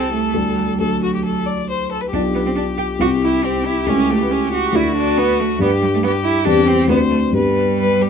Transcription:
0.00 0.31 C2 soft
0.00 0.12 C4 medium
0.00 0.31 E4 soft
0.00 0.31 G4 soft
0.00 0.31 A4 soft
0.00 0.72 A4 medium
0.13 0.37 A3 medium
0.33 0.77 D2 soft
0.33 0.81 G3 medium
0.33 0.78 D4 soft
0.33 0.78 F#4 soft
0.33 0.78 A4 soft
0.79 2.09 D2 soft
0.79 1.91 F#3 soft
0.79 2.10 D4 soft
0.79 2.10 F#4 soft
0.79 1.01 A4 soft
0.79 2.10 A4 soft
1.04 1.14 F#4 soft
1.15 1.25 G4 soft
1.25 1.48 A4 soft
1.46 1.69 D5 soft
1.70 1.91 C5 soft
1.92 2.02 A4 soft
2.01 2.12 B4 soft
2.12 2.99 B1 soft
2.12 2.21 D4 medium
2.12 2.99 D4 soft
2.12 2.99 F4 soft
2.12 4.78 G4 medium
2.12 2.99 G4 soft
2.35 2.39 B3 medium
2.46 2.51 C4 medium
2.56 2.64 D4 medium
2.78 2.86 G4 medium
2.99 3.85 C2 soft
2.99 3.85 C4 soft
2.99 3.86 E4 soft
2.99 3.09 F#4 medium
2.99 3.86 G4 soft
3.23 3.46 E4 medium
3.44 3.67 C4 medium
3.65 3.90 E4 medium
3.86 4.71 C#2 soft
3.86 4.71 A3 soft
3.86 4.13 C#4 medium
3.86 4.72 E4 soft
3.86 4.72 G4 soft
4.11 4.23 A3 medium
4.22 4.33 B3 medium
4.31 4.53 C#4 medium
4.54 4.77 F#4 medium
4.72 5.58 D2 medium
4.72 5.58 A3 soft
4.72 5.58 D4 soft
4.72 4.96 E4 medium
4.72 5.59 F#4 soft
4.77 5.62 F#4 medium
4.96 5.19 D4 medium
5.18 5.41 B3 medium
5.40 5.60 A3 medium
5.59 6.43 G2 medium
5.59 6.43 G3 soft
5.59 5.69 B3 medium
5.59 6.43 D4 medium
5.59 6.44 G4 soft
5.59 6.02 G4 medium
5.82 5.86 G3 medium
5.94 5.98 A3 medium
6.03 6.11 B3 medium
6.07 6.48 G4 medium
6.24 6.47 E4 medium
6.45 6.88 E2 soft
6.45 6.88 G3 soft
6.45 6.87 C4 soft
6.45 6.69 D4 medium
6.45 6.89 G4 soft
6.49 6.91 G4 medium
6.68 6.88 C4 medium
6.88 7.32 D2 soft
6.88 6.97 B3 medium
6.88 7.32 C4 soft
6.88 7.32 D4 soft
6.88 7.33 F#4 soft
6.88 7.35 C5 medium
7.10 7.18 A3 medium
7.31 8.10 G2 soft
7.31 8.10 G3 medium
7.31 8.10 B3 soft
7.31 8.10 D4 soft
7.31 8.10 G4 soft
7.36 7.75 B4 medium
7.80 8.03 B4 medium
8.02 8.10 G4 soft

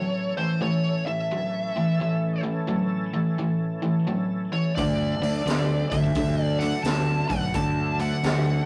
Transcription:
0.00 0.33 A2 medium
0.00 1.97 E3 medium
0.00 0.33 F#3 loud
0.00 1.97 A3 medium
0.00 1.97 C#4 medium
0.00 1.96 A4 medium
0.00 0.34 C#5 medium
0.37 0.60 A2 medium
0.37 0.60 E3 medium
0.37 0.61 C5 medium
0.61 1.02 A2 medium
0.61 1.03 E3 medium
0.61 1.04 C#5 medium
1.06 1.29 A2 medium
1.06 1.29 E3 medium
1.06 2.41 E5 medium
1.31 1.72 A2 medium
1.31 1.72 F#3 medium
1.76 1.98 A2 medium
1.76 1.99 E3 medium
1.97 2.41 A2 medium
1.97 4.73 E3 medium
1.97 4.73 A3 medium
1.97 4.73 C#4 medium
1.97 4.73 A4 medium
2.01 2.41 E3 medium
2.44 2.67 A2 medium
2.44 2.67 E3 medium
2.68 3.09 A2 medium
2.68 3.10 F#3 medium
3.14 3.36 A2 medium
3.14 3.36 E3 medium
3.38 3.79 A2 medium
3.38 3.79 E3 medium
3.82 4.05 A2 medium
3.82 4.05 E3 medium
4.07 4.48 A2 medium
4.07 4.48 F#3 medium
4.53 4.75 A2 medium
4.53 4.75 E3 medium
4.53 4.75 C#5 medium
4.75 5.14 D2 medium
4.75 5.18 D3 medium
4.75 7.51 F#3 medium
4.75 7.51 A3 medium
4.75 5.18 A3 medium
4.75 7.51 D4 medium
4.75 7.51 A4 medium
4.75 5.90 D5 medium
4.75 kick medium
4.75 open hi-hat medium
5.20 5.41 D2 medium
5.20 5.44 D3 medium
5.20 5.44 A3 medium
5.20 open hi-hat soft
5.46 5.83 D2 loud
5.46 5.87 D3 medium
5.46 5.87 B3 medium
5.46 snare loud
5.46 open hi-hat medium
5.90 6.12 D2 medium
5.90 6.14 D3 medium
5.90 6.14 A3 medium
5.90 6.44 E5 medium
5.90 kick medium
5.90 open hi-hat medium
6.04 kick medium
6.15 6.72 D2 medium
6.15 6.56 D3 medium
6.15 6.57 A3 medium
6.15 kick loud
6.15 open hi-hat medium
6.44 6.62 D5 medium
6.59 6.83 D3 medium
6.59 6.83 F#5 medium
6.59 open hi-hat soft
6.63 6.84 A3 medium
6.83 7.21 D2 medium
6.83 7.26 D3 medium
6.83 7.26 B3 medium
6.83 7.28 A5 loud
6.83 snare loud
6.83 open hi-hat medium
7.29 7.50 B1 medium
7.29 7.52 D3 medium
7.29 7.52 A3 medium
7.29 7.54 F#5 loud
7.29 kick medium
7.29 open hi-hat soft
7.54 8.11 D2 medium
7.54 7.95 D3 medium
7.54 8.65 F#3 medium
7.54 8.65 A3 medium
7.54 7.95 A3 medium
7.54 8.65 D4 medium
7.54 8.65 A4 medium
7.54 8.00 A5 loud
7.54 kick medium
7.54 open hi-hat medium
7.99 8.21 D3 medium
7.99 8.21 A3 medium
7.99 8.65 F#5 medium
7.99 open hi-hat soft
8.23 8.60 D2 loud
8.23 8.64 D3 medium
8.23 8.64 B3 medium
8.23 snare loud
8.23 open hi-hat medium

